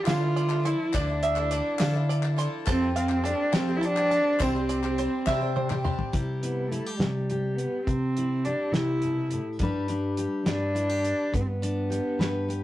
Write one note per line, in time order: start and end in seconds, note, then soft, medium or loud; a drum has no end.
0.00 0.35 D5 medium
0.00 0.65 E5 medium
0.06 0.21 D3 medium
0.06 0.73 D3 medium
0.06 0.21 F3 medium
0.06 0.22 D4 medium
0.06 0.20 E4 medium
0.06 0.67 F4 medium
0.06 0.20 A4 medium
0.06 1.22 F5 medium
0.06 snare loud
0.06 clap medium
0.06 closed hi-hat medium
0.06 tambourine medium
0.21 0.51 D4 soft
0.21 0.49 E4 soft
0.21 0.49 A4 soft
0.36 0.93 D5 medium
0.36 closed hi-hat soft
0.49 0.63 D4 soft
0.49 0.64 E4 soft
0.49 0.65 A4 soft
0.49 clap medium
0.64 0.93 F3 medium
0.64 0.93 D4 medium
0.64 0.93 E4 medium
0.64 0.96 E4 medium
0.64 0.93 A4 medium
0.64 1.80 C6 medium
0.64 closed hi-hat medium
0.93 1.60 D2 loud
0.93 1.08 D3 medium
0.93 1.08 F3 medium
0.93 1.08 D4 medium
0.93 2.38 D4 medium
0.93 1.08 E4 medium
0.93 1.06 A4 medium
0.93 1.50 D5 medium
0.93 kick medium
0.93 clap medium
0.93 closed hi-hat medium
0.93 tambourine loud
1.07 1.38 D4 soft
1.07 1.37 E4 soft
1.07 1.36 A4 medium
1.23 1.80 E5 medium
1.23 closed hi-hat medium
1.23 tambourine soft
1.36 1.50 D4 soft
1.36 1.51 E4 soft
1.36 1.51 A4 medium
1.36 clap medium
1.51 1.79 F3 medium
1.51 1.79 D4 medium
1.51 1.79 E4 medium
1.51 1.79 A4 medium
1.51 2.08 D5 medium
1.51 closed hi-hat medium
1.51 tambourine soft
1.79 1.94 D3 medium
1.79 2.46 D3 medium
1.79 1.94 F3 medium
1.79 1.94 D4 medium
1.79 1.93 E4 medium
1.79 1.92 A4 medium
1.79 2.67 F5 medium
1.79 snare loud
1.79 clap medium
1.79 closed hi-hat medium
1.79 tambourine medium
1.93 2.24 D4 soft
1.93 2.23 E4 medium
1.93 2.21 A4 medium
2.09 2.67 D5 medium
2.09 closed hi-hat medium
2.22 2.36 D4 soft
2.22 2.37 E4 soft
2.22 2.37 A4 medium
2.22 clap medium
2.36 2.64 F3 medium
2.36 2.66 D4 medium
2.36 2.66 E4 medium
2.36 2.66 A4 medium
2.36 2.67 C6 medium
2.36 closed hi-hat medium
2.65 3.33 F2 medium
2.65 2.80 F3 medium
2.65 2.81 A3 medium
2.65 2.81 C4 medium
2.65 2.95 C4 medium
2.65 2.81 F4 medium
2.65 2.79 G4 medium
2.65 3.22 A4 medium
2.65 kick loud
2.65 clap medium
2.65 closed hi-hat medium
2.65 tambourine medium
2.81 3.10 C4 soft
2.81 3.09 F4 soft
2.81 3.08 G4 soft
2.96 3.26 C4 medium
2.96 4.11 F5 medium
2.96 closed hi-hat medium
2.96 tambourine soft
3.09 3.24 C4 soft
3.09 3.24 F4 soft
3.09 3.24 G4 medium
3.09 clap medium
3.24 3.53 A3 medium
3.24 3.53 C4 medium
3.24 3.56 D4 medium
3.24 3.54 F4 medium
3.24 3.54 G4 medium
3.24 3.80 A4 medium
3.24 closed hi-hat medium
3.24 tambourine soft
3.53 4.19 F3 medium
3.53 3.68 F3 medium
3.53 3.68 A3 medium
3.53 3.68 C4 medium
3.53 3.78 C4 medium
3.53 3.68 F4 medium
3.53 3.66 G4 medium
3.53 4.39 G5 medium
3.53 snare loud
3.53 clap medium
3.53 closed hi-hat medium
3.53 tambourine medium
3.67 3.97 C4 soft
3.67 3.96 F4 soft
3.67 3.95 G4 medium
3.76 3.87 E4 medium
3.81 4.43 D4 loud
3.81 4.39 A4 medium
3.81 closed hi-hat soft
3.97 4.11 C4 soft
3.97 4.11 F4 soft
3.97 4.11 G4 soft
3.97 clap medium
4.10 4.39 A3 medium
4.10 4.40 C4 medium
4.10 4.40 F4 medium
4.10 4.40 G4 medium
4.10 4.40 A5 medium
4.10 closed hi-hat medium
4.39 5.06 C2 medium
4.39 4.54 C3 medium
4.39 4.54 E3 medium
4.39 4.54 G3 medium
4.39 4.55 C4 medium
4.39 5.85 C4 medium
4.39 4.54 D4 medium
4.39 4.54 G4 medium
4.39 4.97 C5 medium
4.39 kick loud
4.39 clap medium
4.39 closed hi-hat medium
4.39 tambourine medium
4.55 4.84 G3 soft
4.55 4.83 C4 soft
4.55 4.83 D4 soft
4.55 4.82 G4 soft
4.69 5.84 D5 medium
4.69 closed hi-hat medium
4.69 tambourine soft
4.83 4.97 G3 soft
4.83 4.97 C4 soft
4.83 4.98 D4 soft
4.83 4.97 G4 soft
4.83 clap medium
4.98 5.26 G3 medium
4.98 5.27 C4 medium
4.98 5.27 D4 medium
4.98 5.27 G4 medium
4.98 5.55 C5 medium
4.98 closed hi-hat medium
5.26 5.92 C3 medium
5.26 5.41 C3 medium
5.26 5.41 E3 medium
5.26 5.41 G3 medium
5.26 5.41 C4 medium
5.26 5.40 D4 medium
5.26 5.39 G4 medium
5.26 6.13 E5 medium
5.26 kick medium
5.26 snare medium
5.26 clap medium
5.26 tambourine medium
5.41 5.70 G3 soft
5.41 5.69 C4 medium
5.41 5.69 D4 soft
5.41 5.68 G4 medium
5.56 6.13 C5 medium
5.56 high tom medium
5.69 5.83 G3 soft
5.69 5.84 C4 soft
5.69 5.84 D4 soft
5.69 5.84 G4 medium
5.69 clap medium
5.69 mid tom medium
5.69 tambourine soft
5.84 6.13 G3 medium
5.84 6.13 C4 medium
5.84 6.13 D4 medium
5.84 6.13 G4 medium
5.84 6.13 C6 medium
5.84 mid tom medium
5.99 floor tom medium
6.12 6.64 C3 medium
6.12 6.79 C3 medium
6.12 7.00 G3 soft
6.12 6.43 E4 soft
6.12 6.71 G4 medium
6.12 kick medium
6.12 closed hi-hat medium
6.42 6.70 B3 medium
6.42 6.70 E4 medium
6.42 closed hi-hat medium
6.69 6.98 A3 medium
6.69 6.86 E4 medium
6.69 closed hi-hat medium
6.86 7.00 G4 soft
6.97 7.65 C3 medium
6.97 7.57 G3 medium
6.97 7.52 G3 medium
6.97 snare medium
6.97 closed hi-hat medium
7.02 7.30 G4 medium
7.30 8.46 G4 medium
7.30 closed hi-hat soft
7.55 7.85 B3 medium
7.55 closed hi-hat soft
7.86 8.52 C3 medium
7.86 8.39 C3 medium
7.86 8.46 C4 medium
7.86 kick medium
7.86 closed hi-hat medium
8.17 9.57 E4 medium
8.17 closed hi-hat medium
8.45 8.74 D4 medium
8.45 9.62 G4 medium
8.45 closed hi-hat soft
8.72 9.38 C3 medium
8.72 9.02 C3 medium
8.72 9.37 E4 medium
8.72 snare medium
8.72 closed hi-hat medium
9.02 9.31 B2 soft
9.02 closed hi-hat soft
9.31 9.60 A2 medium
9.31 closed hi-hat soft
9.59 10.25 G2 medium
9.59 10.12 G2 medium
9.59 10.45 G3 medium
9.59 9.89 D4 medium
9.59 10.18 G4 medium
9.59 10.46 B4 medium
9.59 kick medium
9.59 closed hi-hat medium
9.88 11.30 D4 medium
9.88 closed hi-hat medium
10.17 10.75 G4 soft
10.17 closed hi-hat medium
10.46 11.12 G2 medium
10.46 10.98 G3 medium
10.46 11.35 D4 medium
10.46 11.29 B4 medium
10.46 snare medium
10.46 closed hi-hat medium
10.75 10.89 E4 soft
10.75 closed hi-hat medium
10.89 11.33 G4 soft
11.05 closed hi-hat medium
11.32 11.84 G2 medium
11.32 11.99 G2 medium
11.32 11.42 B3 medium
11.32 kick medium
11.32 closed hi-hat medium
11.41 11.49 C4 medium
11.47 12.63 B3 medium
11.62 12.63 D4 medium
11.62 closed hi-hat medium
11.90 12.47 G4 soft
11.90 closed hi-hat medium
12.19 12.63 G2 medium
12.19 12.63 G3 medium
12.19 12.63 B4 medium
12.19 snare medium
12.19 closed hi-hat medium
12.48 12.63 G4 soft
12.48 closed hi-hat soft